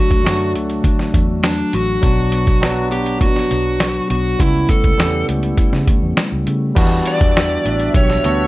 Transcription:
Already playing: clean electric guitar D3 A3 D4, tine electric piano F#3 A3 D4 F#4, electric slide guitar F#4
0.11 fingered electric bass D2, kick, closed hi-hat
0.24 fingered electric bass F#2, tine electric piano F#3 A3 D4 F#4, clean electric guitar D4, snare, closed hi-hat
0.55 fingered electric bass D2, clean electric guitar A3, closed hi-hat
0.70 closed hi-hat
0.84 fingered electric bass D3, clean electric guitar D4, kick, closed hi-hat
0.99 snare
1.14 fingered electric bass E2, clean electric guitar A3, kick, closed hi-hat
1.44 clean electric guitar F#3, electric slide guitar D4, snare, closed hi-hat
1.73 fingered electric bass A1, clean electric guitar A3, electric slide guitar F#4, closed hi-hat
2.01 fingered electric bass B1, clean electric guitar B2, tine electric piano F#3 B3 D4 F#4, kick, closed hi-hat
2.32 clean electric guitar B3, closed hi-hat
2.47 kick, closed hi-hat
2.61 tine electric piano F#3 B3 D4 F#4, clean electric guitar D4, snare, closed hi-hat
2.91 clean electric guitar B3, electric slide guitar G4, closed hi-hat
3.06 closed hi-hat
3.20 fingered electric bass B2, clean electric guitar D4, electric slide guitar F#4, kick, closed hi-hat
3.36 snare
3.50 fingered electric bass B1, clean electric guitar B3, closed hi-hat
3.79 clean electric guitar F#3, snare, closed hi-hat
4.09 fingered electric bass B1, clean electric guitar B3, electric slide guitar F#4, closed hi-hat
4.39 fingered electric bass C#2, clean electric guitar C#3, tine electric piano G3 B3 C#4 E4, electric slide guitar E4, kick, closed hi-hat
4.69 clean electric guitar A3, electric slide guitar A4, kick, closed hi-hat
4.84 fingered electric bass C#2, kick, closed hi-hat
4.97 fingered electric bass E2, tine electric piano G3 B3 C#4 G4, clean electric guitar E4, snare, closed hi-hat
5.28 fingered electric bass C#2, clean electric guitar A3, closed hi-hat
5.43 closed hi-hat
5.58 clean electric guitar E4, kick, closed hi-hat
5.73 fingered electric bass C#3, snare
5.87 fingered electric bass D2, clean electric guitar A3, kick, closed hi-hat
6.03 fingered electric bass E2
6.17 clean electric guitar G3, muted fingered electric bass stroke, snare, closed hi-hat
6.32 fingered electric bass C#2
6.47 fingered electric bass C#3, clean electric guitar A3, closed hi-hat
6.75 fingered electric bass E2, clean electric guitar E3, tine electric piano G3 B3 D4 F#4, analog synth pad D4 E5 E6, kick, closed hi-hat, crash
7.05 clean electric guitar D4, electric slide guitar D5, closed hi-hat
7.21 fingered electric bass E2, kick, closed hi-hat
7.35 clean electric guitar G4, snare, closed hi-hat
7.65 fingered electric bass A1, clean electric guitar D4, closed hi-hat
7.80 closed hi-hat
7.94 fingered electric bass B1, clean electric guitar G4, electric slide guitar C#5, kick, closed hi-hat
8.10 snare
8.23 fingered electric bass D2, tine electric piano G3 B3 D4 F#4, clean electric guitar B3, closed hi-hat

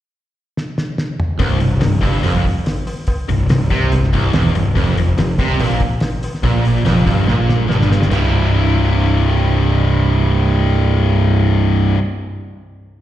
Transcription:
0.57 snare
0.78 snare
0.98 snare
1.20 mid tom
1.39 picked electric bass C1, distorted electric guitar C2, kick, open hi-hat, cowbell
1.60 picked electric bass C1, distorted electric guitar C2, open hi-hat
1.81 picked electric bass C1, distorted electric guitar C2, snare, open hi-hat, cowbell
2.01 picked electric bass G1, distorted electric guitar G2, kick, open hi-hat, cowbell
2.23 picked electric bass F1, distorted electric guitar F2, open hi-hat, cowbell
2.45 kick, open hi-hat
2.66 snare, open hi-hat, cowbell
2.87 open hi-hat, cowbell
3.07 kick, open hi-hat, cowbell
3.29 picked electric bass C1, distorted electric guitar C2, open hi-hat
3.49 picked electric bass C1, distorted electric guitar C2, snare, open hi-hat, cowbell
3.70 picked electric bass C2, distorted electric guitar C3, kick, open hi-hat, cowbell
3.92 picked electric bass C1, distorted electric guitar C2, open hi-hat, cowbell
4.04 snare
4.13 picked electric bass C1, distorted electric guitar C2, kick, open hi-hat
4.32 picked electric bass E1, distorted electric guitar E2, snare, open hi-hat, cowbell
4.54 picked electric bass C1, distorted electric guitar C2, open hi-hat, cowbell
4.75 picked electric bass F1, distorted electric guitar F2, kick, open hi-hat, cowbell
4.96 picked electric bass F1, distorted electric guitar F2, open hi-hat
5.17 picked electric bass F1, distorted electric guitar F2, snare, open hi-hat, cowbell
5.38 picked electric bass C2, distorted electric guitar C3, kick, open hi-hat, cowbell
5.58 picked electric bass A#1, distorted electric guitar A#2, open hi-hat, cowbell
5.80 kick, open hi-hat
6.00 snare, open hi-hat, cowbell
6.23 open hi-hat, cowbell
6.35 snare
6.43 picked electric bass A#1, distorted electric guitar A#2, kick, open hi-hat, cowbell
6.65 open hi-hat
6.84 picked electric bass F1, distorted electric guitar F2, snare, open hi-hat, cowbell
7.06 picked electric bass G1, distorted electric guitar G2, kick, open hi-hat, cowbell
7.27 picked electric bass A#1, distorted electric guitar A#2, snare, cowbell
7.49 snare
7.68 picked electric bass G1, distorted electric guitar G2, snare, cowbell
7.82 snare
7.90 snare, cowbell
8.02 snare
8.10 picked electric bass C1, distorted electric guitar C2 G2 C3 G3, snare, floor tom, cowbell, crash
8.14 distorted electric guitar E4

